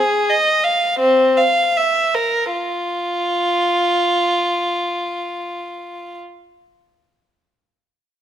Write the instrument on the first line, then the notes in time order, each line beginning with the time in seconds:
violin
Already playing: G#4
0.29 D#5
0.64 F5
0.99 C4
1.37 F5
1.76 E5
2.14 A#4
2.52 F4